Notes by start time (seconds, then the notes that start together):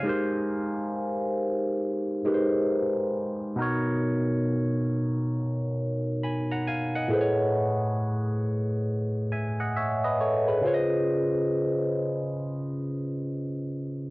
Already playing: F5 G#5
0.03 G#3 D#4 G4
0.07 A#4 C5
2.24 G#3 D#4 G4 A#4 B4
2.34 C5
3.56 B2 B3 D#4
3.60 A#4 C#5
6.23 G#5 B5
6.51 F#5 A#5
6.67 F5 G#5
6.95 D#5 F#5
7.08 A2 A3 G#4
7.13 B4 C5
7.21 C#5
9.32 E5 G#5
9.60 D#5 F#5
9.76 C#5 E5
10.04 B4 D#5
10.20 A4 C#5
10.48 G#4 B4
10.61 C#3 C#4 F4
10.66 C5 C#5
10.74 D#5